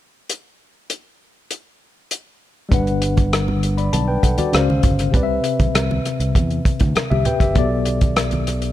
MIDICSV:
0, 0, Header, 1, 5, 480
1, 0, Start_track
1, 0, Key_signature, 1, "major"
1, 0, Tempo, 605449
1, 232, Time_signature, 4, 2, 24, 8
1, 6916, End_track
2, 0, Start_track
2, 0, Title_t, "Tine electric piano"
2, 0, Program_c, 0, 4
2, 2131, Note_on_c, 0, 55, 62
2, 2146, Note_on_c, 0, 62, 60
2, 2159, Note_on_c, 0, 71, 59
2, 2174, Note_on_c, 0, 78, 75
2, 2283, Control_c, 0, 64, 127
2, 2862, Note_off_c, 0, 71, 0
2, 2869, Note_off_c, 0, 78, 0
2, 2993, Note_on_c, 0, 83, 55
2, 2997, Note_on_c, 0, 74, 47
2, 3107, Note_off_c, 0, 83, 0
2, 3109, Note_off_c, 0, 74, 0
2, 3114, Note_on_c, 0, 81, 61
2, 3227, Note_off_c, 0, 81, 0
2, 3233, Note_on_c, 0, 79, 55
2, 3236, Note_on_c, 0, 71, 52
2, 3347, Note_off_c, 0, 79, 0
2, 3349, Note_off_c, 0, 71, 0
2, 3353, Note_on_c, 0, 78, 57
2, 3359, Note_on_c, 0, 69, 47
2, 3467, Note_off_c, 0, 78, 0
2, 3470, Note_off_c, 0, 69, 0
2, 3475, Note_on_c, 0, 74, 59
2, 3479, Note_on_c, 0, 66, 51
2, 3553, Note_off_c, 0, 55, 0
2, 3560, Note_off_c, 0, 62, 0
2, 3584, Note_on_c, 0, 49, 68
2, 3590, Note_on_c, 0, 61, 65
2, 3597, Note_on_c, 0, 72, 64
2, 3602, Control_c, 0, 64, 0
2, 3604, Note_on_c, 0, 77, 72
2, 3702, Note_off_c, 0, 74, 0
2, 3704, Note_off_c, 0, 66, 0
2, 3754, Control_c, 0, 64, 127
2, 4054, Note_on_c, 0, 48, 73
2, 4066, Note_on_c, 0, 60, 65
2, 4068, Note_off_c, 0, 49, 0
2, 4071, Note_off_c, 0, 61, 0
2, 4074, Note_off_c, 0, 72, 0
2, 4078, Note_off_c, 0, 77, 0
2, 4079, Note_on_c, 0, 71, 63
2, 4084, Control_c, 0, 64, 0
2, 4095, Note_on_c, 0, 74, 60
2, 4135, Note_off_c, 0, 74, 0
2, 4147, Note_on_c, 0, 76, 71
2, 4238, Control_c, 0, 64, 127
2, 5485, Note_off_c, 0, 71, 0
2, 5520, Note_off_c, 0, 76, 0
2, 5632, Note_on_c, 0, 76, 60
2, 5636, Note_on_c, 0, 67, 53
2, 5745, Note_off_c, 0, 76, 0
2, 5747, Note_off_c, 0, 67, 0
2, 5754, Note_on_c, 0, 79, 60
2, 5760, Note_on_c, 0, 71, 46
2, 5866, Note_off_c, 0, 79, 0
2, 5869, Note_off_c, 0, 71, 0
2, 5872, Note_on_c, 0, 76, 59
2, 5877, Note_on_c, 0, 67, 47
2, 5949, Note_off_c, 0, 48, 0
2, 5955, Note_off_c, 0, 60, 0
2, 5970, Note_on_c, 0, 47, 66
2, 5985, Note_on_c, 0, 59, 59
2, 6000, Note_on_c, 0, 69, 64
2, 6001, Control_c, 0, 64, 0
2, 6013, Note_on_c, 0, 74, 77
2, 6099, Note_off_c, 0, 76, 0
2, 6101, Note_off_c, 0, 67, 0
2, 6127, Control_c, 0, 64, 127
2, 6916, Note_off_c, 0, 47, 0
2, 6916, Note_off_c, 0, 59, 0
2, 6916, Note_off_c, 0, 69, 0
2, 6916, Note_off_c, 0, 74, 0
2, 6916, End_track
3, 0, Start_track
3, 0, Title_t, "Fingered electric bass"
3, 0, Program_c, 1, 33
3, 2153, Note_on_c, 1, 31, 103
3, 3081, Note_off_c, 1, 31, 0
3, 3114, Note_on_c, 1, 35, 76
3, 3301, Note_off_c, 1, 35, 0
3, 3354, Note_on_c, 1, 35, 80
3, 3448, Note_off_c, 1, 35, 0
3, 3598, Note_on_c, 1, 37, 85
3, 3783, Note_off_c, 1, 37, 0
3, 3833, Note_on_c, 1, 31, 77
3, 4020, Note_off_c, 1, 31, 0
3, 4073, Note_on_c, 1, 36, 87
3, 4260, Note_off_c, 1, 36, 0
3, 4438, Note_on_c, 1, 35, 82
3, 4529, Note_off_c, 1, 35, 0
3, 4552, Note_on_c, 1, 36, 78
3, 4740, Note_off_c, 1, 36, 0
3, 4912, Note_on_c, 1, 36, 86
3, 5006, Note_off_c, 1, 36, 0
3, 5037, Note_on_c, 1, 40, 72
3, 5222, Note_off_c, 1, 40, 0
3, 5396, Note_on_c, 1, 38, 67
3, 5488, Note_off_c, 1, 38, 0
3, 5637, Note_on_c, 1, 36, 81
3, 5728, Note_off_c, 1, 36, 0
3, 5869, Note_on_c, 1, 30, 75
3, 5963, Note_off_c, 1, 30, 0
3, 5992, Note_on_c, 1, 35, 88
3, 6916, Note_off_c, 1, 35, 0
3, 6916, End_track
4, 0, Start_track
4, 0, Title_t, "Muted fingered electric bass strokes"
4, 5518, Note_on_c, 9, 29, 41
4, 5597, Note_off_c, 9, 29, 0
4, 6916, End_track
5, 0, Start_track
5, 0, Title_t, "Drums"
5, 234, Note_on_c, 9, 42, 55
5, 313, Note_off_c, 9, 42, 0
5, 713, Note_on_c, 9, 42, 54
5, 792, Note_off_c, 9, 42, 0
5, 1194, Note_on_c, 9, 42, 49
5, 1273, Note_off_c, 9, 42, 0
5, 1673, Note_on_c, 9, 42, 51
5, 1752, Note_off_c, 9, 42, 0
5, 2153, Note_on_c, 9, 36, 104
5, 2155, Note_on_c, 9, 42, 65
5, 2155, Note_on_c, 9, 62, 30
5, 2155, Note_on_c, 9, 64, 64
5, 2232, Note_off_c, 9, 36, 0
5, 2234, Note_off_c, 9, 62, 0
5, 2234, Note_off_c, 9, 64, 0
5, 2235, Note_off_c, 9, 42, 0
5, 2276, Note_on_c, 9, 42, 33
5, 2356, Note_off_c, 9, 42, 0
5, 2392, Note_on_c, 9, 42, 74
5, 2471, Note_off_c, 9, 42, 0
5, 2513, Note_on_c, 9, 63, 59
5, 2517, Note_on_c, 9, 36, 75
5, 2518, Note_on_c, 9, 42, 45
5, 2592, Note_off_c, 9, 63, 0
5, 2597, Note_off_c, 9, 36, 0
5, 2597, Note_off_c, 9, 42, 0
5, 2640, Note_on_c, 9, 42, 83
5, 2642, Note_on_c, 9, 37, 92
5, 2719, Note_off_c, 9, 42, 0
5, 2722, Note_off_c, 9, 37, 0
5, 2759, Note_on_c, 9, 63, 58
5, 2839, Note_off_c, 9, 63, 0
5, 2878, Note_on_c, 9, 42, 59
5, 2958, Note_off_c, 9, 42, 0
5, 2997, Note_on_c, 9, 42, 45
5, 3076, Note_off_c, 9, 42, 0
5, 3116, Note_on_c, 9, 42, 75
5, 3118, Note_on_c, 9, 62, 28
5, 3118, Note_on_c, 9, 63, 44
5, 3196, Note_off_c, 9, 42, 0
5, 3197, Note_off_c, 9, 62, 0
5, 3197, Note_off_c, 9, 63, 0
5, 3354, Note_on_c, 9, 36, 70
5, 3355, Note_on_c, 9, 62, 23
5, 3357, Note_on_c, 9, 42, 59
5, 3434, Note_off_c, 9, 36, 0
5, 3434, Note_off_c, 9, 62, 0
5, 3437, Note_off_c, 9, 42, 0
5, 3470, Note_on_c, 9, 42, 50
5, 3476, Note_on_c, 9, 63, 75
5, 3550, Note_off_c, 9, 42, 0
5, 3555, Note_off_c, 9, 63, 0
5, 3594, Note_on_c, 9, 42, 55
5, 3604, Note_on_c, 9, 37, 85
5, 3604, Note_on_c, 9, 62, 33
5, 3673, Note_off_c, 9, 42, 0
5, 3683, Note_off_c, 9, 37, 0
5, 3683, Note_off_c, 9, 62, 0
5, 3723, Note_on_c, 9, 63, 67
5, 3802, Note_off_c, 9, 63, 0
5, 3829, Note_on_c, 9, 42, 64
5, 3833, Note_on_c, 9, 36, 82
5, 3836, Note_on_c, 9, 62, 30
5, 3836, Note_on_c, 9, 64, 58
5, 3909, Note_off_c, 9, 42, 0
5, 3912, Note_off_c, 9, 36, 0
5, 3915, Note_off_c, 9, 62, 0
5, 3915, Note_off_c, 9, 64, 0
5, 3955, Note_on_c, 9, 42, 46
5, 3962, Note_on_c, 9, 37, 31
5, 4035, Note_off_c, 9, 42, 0
5, 4042, Note_off_c, 9, 37, 0
5, 4073, Note_on_c, 9, 36, 105
5, 4074, Note_on_c, 9, 42, 61
5, 4080, Note_on_c, 9, 62, 30
5, 4080, Note_on_c, 9, 64, 62
5, 4153, Note_off_c, 9, 36, 0
5, 4154, Note_off_c, 9, 42, 0
5, 4159, Note_off_c, 9, 62, 0
5, 4159, Note_off_c, 9, 64, 0
5, 4311, Note_on_c, 9, 42, 76
5, 4391, Note_off_c, 9, 42, 0
5, 4436, Note_on_c, 9, 42, 46
5, 4437, Note_on_c, 9, 36, 84
5, 4437, Note_on_c, 9, 63, 68
5, 4515, Note_off_c, 9, 42, 0
5, 4516, Note_off_c, 9, 63, 0
5, 4517, Note_off_c, 9, 36, 0
5, 4559, Note_on_c, 9, 42, 82
5, 4562, Note_on_c, 9, 37, 102
5, 4639, Note_off_c, 9, 42, 0
5, 4641, Note_off_c, 9, 37, 0
5, 4684, Note_on_c, 9, 63, 61
5, 4764, Note_off_c, 9, 63, 0
5, 4800, Note_on_c, 9, 42, 61
5, 4805, Note_on_c, 9, 37, 35
5, 4808, Note_on_c, 9, 62, 28
5, 4879, Note_off_c, 9, 42, 0
5, 4884, Note_off_c, 9, 37, 0
5, 4887, Note_off_c, 9, 62, 0
5, 4917, Note_on_c, 9, 42, 46
5, 4997, Note_off_c, 9, 42, 0
5, 5035, Note_on_c, 9, 36, 83
5, 5038, Note_on_c, 9, 63, 43
5, 5040, Note_on_c, 9, 42, 75
5, 5115, Note_off_c, 9, 36, 0
5, 5117, Note_off_c, 9, 63, 0
5, 5119, Note_off_c, 9, 42, 0
5, 5157, Note_on_c, 9, 42, 30
5, 5237, Note_off_c, 9, 42, 0
5, 5274, Note_on_c, 9, 36, 81
5, 5275, Note_on_c, 9, 62, 22
5, 5279, Note_on_c, 9, 42, 54
5, 5354, Note_off_c, 9, 36, 0
5, 5354, Note_off_c, 9, 62, 0
5, 5359, Note_off_c, 9, 42, 0
5, 5387, Note_on_c, 9, 42, 52
5, 5394, Note_on_c, 9, 63, 67
5, 5397, Note_on_c, 9, 36, 83
5, 5467, Note_off_c, 9, 42, 0
5, 5473, Note_off_c, 9, 63, 0
5, 5476, Note_off_c, 9, 36, 0
5, 5514, Note_on_c, 9, 42, 53
5, 5522, Note_on_c, 9, 62, 28
5, 5524, Note_on_c, 9, 37, 90
5, 5593, Note_off_c, 9, 42, 0
5, 5601, Note_off_c, 9, 62, 0
5, 5603, Note_off_c, 9, 37, 0
5, 5641, Note_on_c, 9, 63, 73
5, 5720, Note_off_c, 9, 63, 0
5, 5750, Note_on_c, 9, 42, 70
5, 5752, Note_on_c, 9, 62, 28
5, 5752, Note_on_c, 9, 64, 68
5, 5829, Note_off_c, 9, 42, 0
5, 5832, Note_off_c, 9, 62, 0
5, 5832, Note_off_c, 9, 64, 0
5, 5868, Note_on_c, 9, 36, 86
5, 5872, Note_on_c, 9, 42, 48
5, 5879, Note_on_c, 9, 37, 32
5, 5948, Note_off_c, 9, 36, 0
5, 5951, Note_off_c, 9, 42, 0
5, 5958, Note_off_c, 9, 37, 0
5, 5989, Note_on_c, 9, 42, 69
5, 5991, Note_on_c, 9, 36, 111
5, 5996, Note_on_c, 9, 62, 28
5, 5996, Note_on_c, 9, 64, 62
5, 6068, Note_off_c, 9, 42, 0
5, 6071, Note_off_c, 9, 36, 0
5, 6076, Note_off_c, 9, 62, 0
5, 6076, Note_off_c, 9, 64, 0
5, 6228, Note_on_c, 9, 42, 79
5, 6241, Note_on_c, 9, 62, 26
5, 6307, Note_off_c, 9, 42, 0
5, 6321, Note_off_c, 9, 62, 0
5, 6352, Note_on_c, 9, 42, 48
5, 6355, Note_on_c, 9, 36, 86
5, 6356, Note_on_c, 9, 63, 68
5, 6431, Note_off_c, 9, 42, 0
5, 6434, Note_off_c, 9, 36, 0
5, 6435, Note_off_c, 9, 63, 0
5, 6472, Note_on_c, 9, 42, 88
5, 6475, Note_on_c, 9, 37, 100
5, 6480, Note_on_c, 9, 62, 29
5, 6552, Note_off_c, 9, 42, 0
5, 6554, Note_off_c, 9, 37, 0
5, 6559, Note_off_c, 9, 62, 0
5, 6588, Note_on_c, 9, 42, 32
5, 6601, Note_on_c, 9, 63, 64
5, 6668, Note_off_c, 9, 42, 0
5, 6680, Note_off_c, 9, 63, 0
5, 6716, Note_on_c, 9, 42, 60
5, 6720, Note_on_c, 9, 37, 33
5, 6725, Note_on_c, 9, 62, 30
5, 6795, Note_off_c, 9, 42, 0
5, 6800, Note_off_c, 9, 37, 0
5, 6805, Note_off_c, 9, 62, 0
5, 6832, Note_on_c, 9, 42, 49
5, 6912, Note_off_c, 9, 42, 0
5, 6916, End_track
0, 0, End_of_file